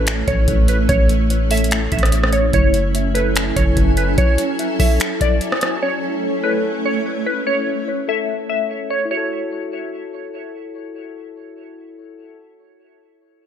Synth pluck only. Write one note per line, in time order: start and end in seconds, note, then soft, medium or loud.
0.00 0.25 B4 medium
0.28 0.66 C#5 medium
0.69 0.88 B4 medium
0.89 1.47 C#5 loud
1.51 1.90 E5 medium
1.92 2.31 E5 medium
2.33 2.52 C#5 medium
2.54 3.12 C#5 loud
3.15 3.53 B4 medium
3.56 3.95 C#5 medium
3.97 4.17 B4 medium
4.18 4.76 C#5 loud
4.80 5.18 E5 medium
5.21 5.41 D5 medium
5.83 6.40 C#5 loud
6.44 6.82 B4 medium
6.86 7.24 C#5 medium
7.26 7.46 B4 medium
7.47 8.05 C#5 loud
8.09 8.47 E5 medium
8.50 8.88 E5 medium
8.90 9.10 C#5 medium
9.11 10.30 C#5 medium